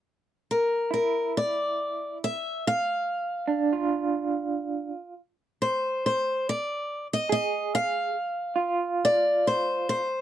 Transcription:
<<
  \new Staff \with { instrumentName = "Steel-string acoustic guitar" } { \time 6/8 \key d \minor \tempo 4. = 47 r8 bes'8 bes'8 d''4 e''8 | f''2 r4 | r8 c''8 c''8 d''8. ees''16 ees''8 | f''4. d''8 c''8 c''8 | }
  \new Staff \with { instrumentName = "Clean electric guitar" } { \time 6/8 \key d \minor r4 e'4.~ e'16 r16 | r4 d'16 f'4.~ f'16 | r2 r8 aes'8~ | aes'8 r8 f'4.~ f'16 r16 | }
>>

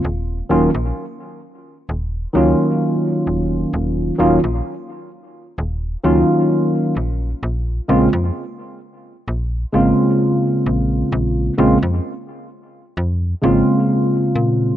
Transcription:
<<
  \new Staff \with { instrumentName = "Tine electric piano" } { \time 4/4 \key ees \dorian \tempo 4 = 65 r8 <ees ges bes des' f'>8 r4. <ees ges bes des' f'>4.~ | <ees ges bes des' f'>8 <ees ges bes des' f'>8 r4. <ees ges bes des' f'>4 r8 | r8 <des aes bes c' f'>8 r4. <des aes bes c' f'>4.~ | <des aes bes c' f'>8 <des aes bes c' f'>8 r4. <des aes bes c' f'>4. | }
  \new Staff \with { instrumentName = "FM bass" } { \clef bass \time 4/4 \key ees \dorian ees,,8 ees,,16 bes,,16 r4 ees,,8 des,16 r8. ees,,8 | ees,,8 ees,,16 bes,,16 r4 ees,,8 des,16 r8. bes,,8 | bes,,8 bes,,16 f,16 r4 bes,,8 aes,,16 r8. bes,,8 | bes,,8 bes,,16 f,16 r4 f,8 aes,,16 r8. bes,8 | }
>>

